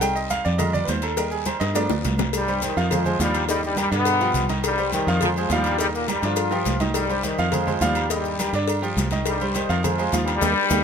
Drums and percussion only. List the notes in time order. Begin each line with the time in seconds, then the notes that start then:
0.01 cowbell, high conga, low agogo, long guiro, maracas
0.16 high conga, maracas
0.30 cowbell, high conga, low agogo, short guiro, maracas
0.45 short guiro, maracas
0.59 cowbell, high conga, low conga, low agogo, long guiro, maracas
0.74 high conga, low conga, low agogo, maracas
0.88 cowbell, high conga, low timbale, low agogo, short guiro, maracas
1.02 cowbell, low agogo, short guiro, maracas
1.17 cowbell, high conga, low agogo, long guiro, maracas
1.31 high conga, maracas
1.45 cowbell, high conga, low agogo, short guiro, maracas
1.60 cowbell, high conga, high timbale, low agogo, short guiro, maracas
1.75 cowbell, high conga, low timbale, low agogo, long guiro, maracas
1.89 high bongo, high conga, low timbale, maracas
2.04 cowbell, high conga, low timbale, low agogo, short guiro, maracas
2.18 cowbell, low bongo, high conga, low timbale, low agogo, short guiro, maracas
2.33 cowbell, low agogo, long guiro, maracas
2.47 high conga, maracas
2.62 cowbell, high conga, low agogo, short guiro, maracas
2.77 short guiro, maracas
2.91 cowbell, high conga, low conga, low agogo, long guiro, maracas
3.05 high conga, low conga, low agogo, maracas
3.20 cowbell, high conga, low agogo, short guiro, maracas
3.34 cowbell, low agogo, short guiro, maracas
3.49 cowbell, high conga, low agogo, long guiro, maracas
3.63 high conga, maracas
3.77 cowbell, high conga, low agogo, short guiro, maracas
3.92 cowbell, low agogo, short guiro, maracas
4.05 cowbell, high conga, low agogo, long guiro, maracas
4.21 high conga, maracas
4.34 cowbell, high conga, low agogo, short guiro, maracas
4.49 cowbell, high conga, low agogo, short guiro, maracas
4.64 cowbell, low agogo, long guiro, maracas
4.78 high conga, maracas
4.92 cowbell, high conga, low agogo, short guiro, maracas
5.08 short guiro, maracas
5.21 cowbell, high conga, low conga, low agogo, long guiro, maracas
5.36 high conga, low agogo, maracas
5.50 cowbell, high conga, low timbale, low agogo, short guiro, maracas
5.64 cowbell, high conga, low agogo, short guiro, maracas
5.78 cowbell, high conga, low agogo, long guiro, maracas
5.94 high conga, maracas
6.08 cowbell, high conga, low agogo, short guiro, maracas
6.22 cowbell, high conga, low agogo, short guiro, maracas
6.36 cowbell, high conga, low agogo, long guiro, maracas
6.51 high conga, high timbale, maracas
6.65 cowbell, high conga, low timbale, low agogo, short guiro, maracas
6.80 cowbell, high conga, low timbale, low agogo, short guiro, maracas
6.94 cowbell, high conga, low agogo, long guiro, maracas
7.10 high conga, maracas
7.23 cowbell, high conga, low agogo, short guiro, maracas
7.38 short guiro, maracas
7.52 cowbell, high conga, low conga, low agogo, long guiro, maracas
7.67 high conga, low conga, low agogo, maracas
7.81 cowbell, high conga, low timbale, low agogo, short guiro, maracas
7.95 cowbell, low agogo, short guiro, maracas
8.10 cowbell, high conga, low agogo, long guiro, maracas
8.25 high conga, maracas
8.39 cowbell, high conga, low agogo, short guiro, maracas
8.54 cowbell, low agogo, short guiro, maracas
8.68 cowbell, high conga, low agogo, long guiro, maracas
8.84 high conga, maracas
8.97 cowbell, high conga, low timbale, low agogo, short guiro, maracas
9.11 cowbell, high conga, low agogo, short guiro, maracas
9.26 cowbell, high conga, low agogo, long guiro, maracas
9.41 high conga, maracas
9.54 cowbell, high conga, low agogo, short guiro, maracas
9.69 short guiro, maracas
9.83 cowbell, high conga, low conga, low agogo, long guiro, maracas
9.99 low agogo, maracas
10.12 cowbell, high conga, low agogo, short guiro, maracas
10.27 cowbell, low agogo, short guiro, maracas
10.41 cowbell, high conga, high timbale, long guiro, maracas
10.70 cowbell, high conga, high timbale, long guiro, maracas